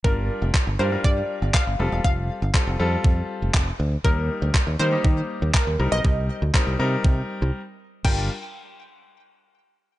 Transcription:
<<
  \new Staff \with { instrumentName = "Synth pluck" } { \time 4/4 \key g \minor \tempo 4 = 120 bes'4. c''8 d''4 f''4 | f''2 r2 | bes'4. c''4 r8 bes'8. ees''16~ | ees''2.~ ees''8 r8 |
g''8 r2. r8 | }
  \new Staff \with { instrumentName = "Grand piano" } { \time 4/4 \key g \minor <g d' f' bes'>4~ <g d' f' bes'>16 r16 <g d' f' bes'>16 <g d' f' bes'>4. r16 <g c' f' a'>8~ | <g c' f' a'>8. r16 <g c' f' a'>8 <g c' f' a'>4. r4 | <g bes ees' bes'>4~ <g bes ees' bes'>16 r16 <g bes ees' bes'>16 <g bes ees' g'>4. r16 <g c' ees' bes'>8~ | <g c' ees' bes'>8. r16 <g c' ees' bes'>8 <g c' ees' bes'>4. r4 |
<g d' f' bes'>8 r2. r8 | }
  \new Staff \with { instrumentName = "Fingered electric bass" } { \clef bass \time 4/4 \key g \minor g,,8. f,,16 r16 g,,16 g,8 g,8 r16 g,,16 r16 g,,16 f,,16 e,,16 | f,,8. g,,16 r16 f,,16 f,8 f,8 r16 f,,16 f,,8 d,8 | ees,8. d,16 r16 ees,16 ees8 ees8 r16 ees,16 r16 ees,16 c,16 b,,16 | c,8. d,16 r16 c,16 c8 c8 r16 c,16 r4 |
g,,8 r2. r8 | }
  \new DrumStaff \with { instrumentName = "Drums" } \drummode { \time 4/4 bd4 <hc bd>4 bd4 <hc bd>4 | bd4 <hc bd>4 bd4 <hc bd>4 | bd4 <hc bd>4 bd4 <hc bd>4 | bd4 <hc bd>4 bd4 r4 |
<cymc bd>4 r4 r4 r4 | }
>>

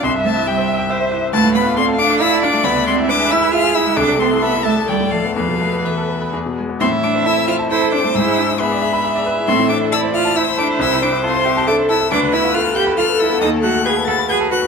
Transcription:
<<
  \new Staff \with { instrumentName = "Violin" } { \time 3/4 \key c \major \tempo 4 = 136 c'''8 a''8 g''4 r4 | \key a \minor a''8 b''8 c'''8 d'''8 e'''8 d'''8 | b''8 c'''8 d'''8 e'''8 f'''8 e'''8 | d'''8 c'''8 b''8 a''8 g''8 f''8 |
f''4 e''4 r4 | c'''8 d'''8 e'''8 f'''8 e'''8 d'''8 | e'''4 b''4. r8 | c'''8 d'''8 e'''8 f'''8 e'''8 d'''8 |
e'''8 d'''8 c'''4 d'''8 e'''8 | d'''8 e'''8 f'''8 g'''8 f'''8 e'''8 | dis'''8 fis'''8 gis'''8 a'''8 gis'''8 fis'''8 | }
  \new Staff \with { instrumentName = "Viola" } { \time 3/4 \key c \major e''2 c''4 | \key a \minor b'4 a'4 d''4~ | d''4 b'4 gis'4 | a'4 e''4 d''4 |
b'2~ b'8 r8 | e''2 c''4~ | c''4 e''2~ | e''4 d''4 c''4~ |
c''2 a'4 | b'2 a'4~ | a'4 gis'4 fis'4 | }
  \new Staff \with { instrumentName = "Violin" } { \time 3/4 \key c \major e''4 e''2 | \key a \minor f''2. | e''2. | a'2.~ |
a'2 gis'8 r8 | e'2 a'4 | gis'4 gis'4 gis'4 | a'4 e'2~ |
e'4 f'8 g'8 a'4 | b'4 a'2~ | a'4 b'4 b'4 | }
  \new Staff \with { instrumentName = "Grand piano" } { \time 3/4 \key c \major c,16 g,16 c'16 e'16 g'16 c''16 e''16 g''16 e''16 c''16 e'16 c'16 | \key a \minor d,16 a,16 a16 f'16 d''16 a'16 f''16 d'''16 f''16 a'16 f'16 a16 | d,16 d16 gis16 e'16 b'16 gis'16 e''16 b''16 e''16 gis'16 e'16 gis16 | c,16 c16 a16 e'16 a'16 e'16 e''16 a''16 d,16 a,16 a16 b16 |
e,16 b,16 a16 b16 b'16 a'16 b'16 b''16 e,16 b,16 gis16 b16 | a,16 e16 a16 c'16 a'16 c'16 c''16 a''16 c''16 a'16 c'16 a16 | gis,16 gis16 d'16 e'16 b'16 d''16 e''16 b''16 e''16 d''16 b'16 e'16 | a,16 e16 c'16 e'16 a'16 c''16 e''16 a''16 e''16 c''16 a'16 e'16 |
c,16 c16 c'16 e'16 a'16 c''16 e''16 a''16 e''16 c''16 a'16 e'16 | d,16 d16 b16 f'16 b'16 f'16 f''16 b''16 f''16 b'16 f'16 b16 | dis,16 dis16 a16 fis'16 b'16 a'16 fis''16 b''16 fis''16 a'16 b'16 fis'16 | }
  \new Staff \with { instrumentName = "Cello" } { \time 3/4 \key c \major c'8 a8 g4 r4 | \key a \minor a8 b8 c'8 d'8 e'8 d'8 | b8 c'8 d'8 e'8 f'8 e'8 | d'8 c'8 b8 a8 g8 f8 |
f4 e4 r4 | c'8 d'8 e'8 f'8 e'8 d'8 | e'4 b4. r8 | c'8 d'8 e'8 f'8 e'8 d'8 |
e'8 d'8 c'4 d'8 e'8 | d'8 e'8 f'8 g'8 f'8 e'8 | dis'8 fis'8 gis'8 a'8 gis'8 fis'8 | }
>>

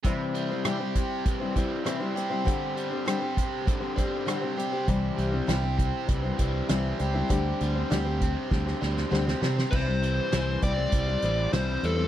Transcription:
<<
  \new Staff \with { instrumentName = "Lead electric guitar" } { \time 4/4 \key c \major \tempo 4 = 99 r1 | r1 | r1 | r1 |
c''4. d''4. c''8 a'8 | }
  \new Staff \with { instrumentName = "Steel-string acoustic guitar" } { \time 4/4 \key c \major <c e g c' e' c''>8. <g c' e' c''>16 <c e g c' e' c''>16 <g c' e' c''>4 <g c' e' c''>16 <g c' e' c''>8 <c e g c' e' c''>16 <g c' e' c''>16 <g c' e' c''>16 <g c' e' c''>16 | <d g c' g' c''>8. <c' g' c''>16 <d g c' g' c''>16 <c' g' c''>8. <g c' g' c''>16 <c' g' c''>16 <g c' g' c''>8 <d g c' g' c''>16 <c' g' c''>16 <g c' g' c''>16 <c' g' c''>16 | <c e g c' e' c''>8. <g c' e' c''>16 <c e g c' e' c''>16 <g c' e' c''>8. <g c' e' c''>16 <g c' e' c''>16 <g c' e' c''>8 <c e g c' e' c''>8 <g c' e' c''>16 <g c' e' c''>16 | <d g c' g' c''>8. <c' g' c''>16 <d g c' g' c''>16 <c' g' c''>8. <g c' g' c''>16 <c' g' c''>16 <g c' g' c''>8 <d g c' g' c''>16 <c' g' c''>16 <g c' g' c''>16 <c' g' c''>16 |
<c e g c' e' c''>16 <g c' e' c''>8. <c e g c' e' c''>8 <g c' e' c''>16 <g c' e' c''>8 <g c' e' c''>16 <g c' e' c''>8 <c e g c' e' c''>8 <g c' e' c''>16 <g c' e' c''>16 | }
  \new Staff \with { instrumentName = "Overdriven electric guitar" } { \clef bass \time 4/4 \key c \major c8 g8 g'8 c'8 e8 g8 c'8 g'8 | d8 g8 g'8 c'8 d8 g8 c'8 g'8 | c8 g8 g'8 c'8 e8 g8 c'8 g'8 | d8 g8 g'8 c'8 d8 g8 c'8 g'8 |
c8 e8 e8 c'8 g8 e8 g8 e8 | }
  \new Staff \with { instrumentName = "Fingered electric bass" } { \clef bass \time 4/4 \key c \major r1 | r1 | c,8 c,8 c,4 c,8 c,8 c,8 des,8 | d,8 d,8 d,4 d,8 d,8 d,8 c8 |
c,4 c,8 c,8 c,8 a,,8 c,8 e,8 | }
  \new DrumStaff \with { instrumentName = "Drums" } \drummode { \time 4/4 <hh bd>8 hh8 <hh ss>8 <hh bd>8 <hh bd>8 <hh bd>8 <hh ss>8 hh8 | <hh bd>8 hh8 <hh ss>8 <hh bd>8 <hh bd>8 <hh bd>8 <hh ss>8 hh8 | <hh bd>8 hh8 <hh sn>8 <hh bd>8 <hh bd>8 <hh bd>8 <hh sn>8 hh8 | <hh bd>8 hh8 <hh sn>8 <hh bd>8 <bd sn>16 sn16 sn16 sn16 sn16 sn16 sn16 sn16 |
<cymc bd>8 hh8 <hh sn>8 <hh bd>8 <hh bd>8 hh8 <hh sn>8 hh8 | }
>>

